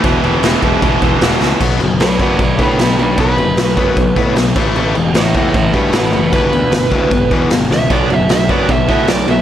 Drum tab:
CC |xxxxxxx-|xxxxxxxx|xxxxxxxx|xxxxxxxx|
SD |--o---oo|--o---o-|--o---o-|--o---o-|
BD |o--ooo--|o--ooo--|o--ooo-o|---ooo--|

CC |xxxxxxx-|xxxxxxxx|
SD |--o---oo|--o---o-|
BD |o--ooo--|o--ooo--|